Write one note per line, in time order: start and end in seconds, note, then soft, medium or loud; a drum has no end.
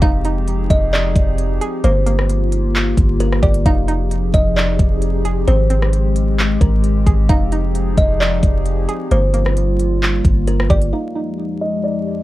0.00 0.68 F1 loud
0.00 1.82 F3 medium
0.00 1.80 C4 medium
0.00 1.82 D#4 medium
0.00 0.24 D#4 loud
0.00 1.80 G4 medium
0.00 1.82 G#4 medium
0.00 0.66 F5 loud
0.00 kick loud
0.00 closed hi-hat medium
0.25 1.61 D#4 medium
0.25 closed hi-hat medium
0.48 closed hi-hat medium
0.70 1.14 F1 loud
0.70 0.92 D#5 medium
0.70 kick medium
0.70 closed hi-hat medium
0.93 1.80 D5 medium
0.93 clap loud
1.16 1.59 F1 loud
1.16 kick medium
1.16 closed hi-hat medium
1.38 closed hi-hat medium
1.61 1.84 G#4 medium
1.61 closed hi-hat medium
1.84 2.94 G1 loud
1.84 3.64 A#3 medium
1.84 2.05 A#3 loud
1.84 3.64 F4 medium
1.84 9.07 G4 medium
1.84 3.16 C5 medium
1.84 closed hi-hat medium
2.06 3.43 A#3 medium
2.06 closed hi-hat medium
2.19 cross-stick medium
2.29 closed hi-hat medium
2.52 closed hi-hat medium
2.76 clap loud
2.97 3.41 G1 loud
2.97 kick medium
2.97 closed hi-hat medium
3.20 3.42 A#4 medium
3.20 closed hi-hat medium
3.32 cross-stick medium
3.43 3.65 G1 loud
3.43 3.66 G4 medium
3.43 3.64 D5 medium
3.43 kick medium
3.43 closed hi-hat soft
3.54 closed hi-hat medium
3.66 4.31 F1 loud
3.66 5.46 F3 medium
3.66 9.07 C4 medium
3.66 5.46 D#4 medium
3.66 3.87 D#4 loud
3.66 5.46 G#4 medium
3.66 4.30 F5 loud
3.66 kick loud
3.66 closed hi-hat medium
3.88 5.25 D#4 medium
3.88 closed hi-hat medium
4.11 closed hi-hat medium
4.34 4.77 F1 loud
4.34 4.56 D#5 medium
4.34 kick medium
4.34 closed hi-hat medium
4.56 5.43 D5 medium
4.56 clap loud
4.79 5.45 F1 loud
4.79 kick medium
4.79 closed hi-hat medium
5.02 closed hi-hat medium
5.25 5.48 G#4 medium
5.25 closed hi-hat medium
5.48 6.57 G#1 loud
5.48 7.28 G#3 medium
5.48 5.69 C4 loud
5.48 6.57 C5 loud
5.48 closed hi-hat medium
5.70 7.07 C4 medium
5.70 closed hi-hat medium
5.82 cross-stick medium
5.93 closed hi-hat medium
6.16 closed hi-hat medium
6.39 clap loud
6.61 7.05 G#1 loud
6.61 7.25 A#4 medium
6.61 kick medium
6.61 closed hi-hat medium
6.84 closed hi-hat medium
7.06 7.28 G#1 loud
7.06 7.29 G#4 medium
7.06 kick medium
7.06 closed hi-hat medium
7.29 7.95 F1 loud
7.29 9.09 F3 medium
7.29 7.51 D#4 loud
7.29 9.09 D#4 medium
7.29 9.09 G#4 medium
7.29 7.93 F5 loud
7.29 kick loud
7.29 closed hi-hat medium
7.52 8.89 D#4 medium
7.52 closed hi-hat medium
7.75 closed hi-hat medium
7.97 8.41 F1 loud
7.97 8.19 D#5 medium
7.97 kick medium
7.97 closed hi-hat medium
8.20 9.07 D5 medium
8.20 clap loud
8.43 8.87 F1 loud
8.43 kick medium
8.43 closed hi-hat medium
8.66 closed hi-hat medium
8.89 9.11 G#4 medium
8.89 closed hi-hat medium
9.11 10.21 G1 loud
9.11 10.91 G3 medium
9.11 10.91 A#3 medium
9.11 9.33 A#3 loud
9.11 10.91 F4 medium
9.11 10.44 C5 medium
9.11 closed hi-hat medium
9.34 10.70 A#3 medium
9.34 closed hi-hat medium
9.46 cross-stick medium
9.57 closed hi-hat medium
9.79 closed hi-hat medium
10.03 clap loud
10.25 10.68 G1 loud
10.25 kick loud
10.25 closed hi-hat medium
10.47 10.69 A#4 medium
10.47 closed hi-hat medium
10.60 cross-stick loud
10.70 10.92 G1 loud
10.70 10.93 G4 medium
10.70 10.92 D5 medium
10.70 kick medium
10.70 closed hi-hat soft
10.82 closed hi-hat medium
10.93 12.23 F2 medium
10.93 12.23 F3 medium
10.93 12.23 G#3 medium
10.93 12.23 D#4 medium
10.93 11.14 D#4 medium
10.93 12.23 G4 medium
10.93 11.57 F5 medium
11.15 12.23 D#4 medium
11.61 11.83 D#5 medium
11.84 12.23 D5 medium